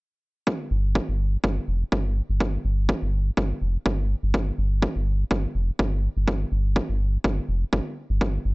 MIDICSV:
0, 0, Header, 1, 3, 480
1, 0, Start_track
1, 0, Tempo, 483871
1, 465, Time_signature, 4, 2, 24, 8
1, 8476, End_track
2, 0, Start_track
2, 0, Title_t, "Analog synth bass"
2, 0, Program_c, 0, 38
2, 705, Note_on_c, 0, 31, 93
2, 993, Note_off_c, 0, 31, 0
2, 1077, Note_on_c, 0, 31, 83
2, 1357, Note_off_c, 0, 31, 0
2, 1426, Note_on_c, 0, 31, 84
2, 1580, Note_off_c, 0, 31, 0
2, 1666, Note_on_c, 0, 29, 75
2, 1820, Note_off_c, 0, 29, 0
2, 1906, Note_on_c, 0, 31, 94
2, 2194, Note_off_c, 0, 31, 0
2, 2277, Note_on_c, 0, 31, 86
2, 2556, Note_off_c, 0, 31, 0
2, 2625, Note_on_c, 0, 31, 94
2, 2914, Note_off_c, 0, 31, 0
2, 2997, Note_on_c, 0, 31, 79
2, 3277, Note_off_c, 0, 31, 0
2, 3346, Note_on_c, 0, 31, 86
2, 3500, Note_off_c, 0, 31, 0
2, 3585, Note_on_c, 0, 29, 75
2, 3739, Note_off_c, 0, 29, 0
2, 3826, Note_on_c, 0, 31, 93
2, 4114, Note_off_c, 0, 31, 0
2, 4197, Note_on_c, 0, 31, 90
2, 4477, Note_off_c, 0, 31, 0
2, 4546, Note_on_c, 0, 31, 93
2, 4834, Note_off_c, 0, 31, 0
2, 4918, Note_on_c, 0, 31, 82
2, 5197, Note_off_c, 0, 31, 0
2, 5266, Note_on_c, 0, 31, 85
2, 5420, Note_off_c, 0, 31, 0
2, 5506, Note_on_c, 0, 29, 78
2, 5659, Note_off_c, 0, 29, 0
2, 5746, Note_on_c, 0, 31, 96
2, 6034, Note_off_c, 0, 31, 0
2, 6117, Note_on_c, 0, 31, 88
2, 6397, Note_off_c, 0, 31, 0
2, 6466, Note_on_c, 0, 31, 96
2, 6754, Note_off_c, 0, 31, 0
2, 6836, Note_on_c, 0, 31, 84
2, 7116, Note_off_c, 0, 31, 0
2, 7186, Note_on_c, 0, 31, 83
2, 7340, Note_off_c, 0, 31, 0
2, 7425, Note_on_c, 0, 29, 78
2, 7579, Note_off_c, 0, 29, 0
2, 7666, Note_on_c, 0, 31, 98
2, 7745, Note_off_c, 0, 31, 0
2, 8036, Note_on_c, 0, 31, 96
2, 8316, Note_off_c, 0, 31, 0
2, 8384, Note_on_c, 0, 31, 93
2, 8476, Note_off_c, 0, 31, 0
2, 8476, End_track
3, 0, Start_track
3, 0, Title_t, "Drums"
3, 466, Note_on_c, 9, 36, 103
3, 565, Note_off_c, 9, 36, 0
3, 946, Note_on_c, 9, 36, 98
3, 1045, Note_off_c, 9, 36, 0
3, 1426, Note_on_c, 9, 36, 106
3, 1525, Note_off_c, 9, 36, 0
3, 1906, Note_on_c, 9, 36, 106
3, 2005, Note_off_c, 9, 36, 0
3, 2386, Note_on_c, 9, 36, 107
3, 2485, Note_off_c, 9, 36, 0
3, 2866, Note_on_c, 9, 36, 108
3, 2965, Note_off_c, 9, 36, 0
3, 3346, Note_on_c, 9, 36, 113
3, 3445, Note_off_c, 9, 36, 0
3, 3826, Note_on_c, 9, 36, 112
3, 3925, Note_off_c, 9, 36, 0
3, 4306, Note_on_c, 9, 36, 108
3, 4405, Note_off_c, 9, 36, 0
3, 4786, Note_on_c, 9, 36, 109
3, 4885, Note_off_c, 9, 36, 0
3, 5266, Note_on_c, 9, 36, 111
3, 5365, Note_off_c, 9, 36, 0
3, 5746, Note_on_c, 9, 36, 112
3, 5845, Note_off_c, 9, 36, 0
3, 6226, Note_on_c, 9, 36, 105
3, 6325, Note_off_c, 9, 36, 0
3, 6706, Note_on_c, 9, 36, 104
3, 6805, Note_off_c, 9, 36, 0
3, 7185, Note_on_c, 9, 36, 115
3, 7285, Note_off_c, 9, 36, 0
3, 7665, Note_on_c, 9, 36, 113
3, 7764, Note_off_c, 9, 36, 0
3, 8145, Note_on_c, 9, 36, 102
3, 8244, Note_off_c, 9, 36, 0
3, 8476, End_track
0, 0, End_of_file